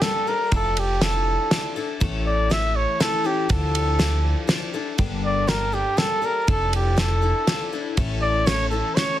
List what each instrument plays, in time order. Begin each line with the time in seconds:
0.02 twelve-string acoustic guitar G3 A#3 D4 A4, trumpet A4, snare, ride
0.27 twelve-string acoustic guitar G3 A#3 D4 A4, trumpet A#4
0.52 upright bass F1, twelve-string acoustic guitar F3 D4 E4 A4, trumpet A4, kick, ride
0.77 trumpet G4, ride
1.01 twelve-string acoustic guitar F3 D4 E4 A4, trumpet A4, snare, ride
1.51 twelve-string acoustic guitar F3 D4 E4 A4, snare, ride
1.76 twelve-string acoustic guitar D4 E4 A4
2.00 upright bass A1, twelve-string acoustic guitar A2 E3 A3 C#4 E4 A4, kick, ride
2.26 trumpet D5
2.50 twelve-string acoustic guitar A3 C#4 E4 A4, trumpet E5, snare, ride
2.76 trumpet C#5
3.00 twelve-string acoustic guitar A3 C#4 E4 A4, trumpet A4, snare, ride
3.24 twelve-string acoustic guitar A3 C#4 E4 A4, trumpet G4
3.49 upright bass D2, twelve-string acoustic guitar D3 F3 D4 E4 A4, trumpet A4, kick, ride
3.75 ride
3.99 twelve-string acoustic guitar F3 D4 E4 A4, snare, ride
4.47 twelve-string acoustic guitar F3 D4 E4 A4, snare, ride
4.74 twelve-string acoustic guitar D4 E4 A4
4.98 upright bass G1, twelve-string acoustic guitar G2 D3 G3 A#3 D4 A4, kick, ride
5.24 trumpet D5
5.47 twelve-string acoustic guitar G3 A#3 D4 A4, trumpet A#4, snare, ride
5.72 twelve-string acoustic guitar G3 A#3 D4 A4, trumpet G4
5.97 twelve-string acoustic guitar G3 A#3 D4 A4, trumpet A4, snare, ride
6.22 twelve-string acoustic guitar G3 A#3 D4 A4, trumpet A#4
6.47 upright bass F1, twelve-string acoustic guitar F3 D4 E4 A4, trumpet A4, kick, ride
6.73 trumpet G4, ride
6.96 twelve-string acoustic guitar F3 D4 E4 A4, trumpet A4, snare, ride
7.22 twelve-string acoustic guitar D4 E4 A4
7.47 twelve-string acoustic guitar F3 D4 E4 A4, snare, ride
7.73 twelve-string acoustic guitar D4 E4 A4
7.97 upright bass A1, twelve-string acoustic guitar A2 E3 A3 C#4 E4 A4, kick, ride
8.22 trumpet D5
8.46 twelve-string acoustic guitar A3 C#4 E4 A4, trumpet C#5, snare, ride
8.70 twelve-string acoustic guitar A3 C#4 E4 A4, trumpet A4
8.95 twelve-string acoustic guitar A3 C#4 E4 A4, trumpet C#5, snare, ride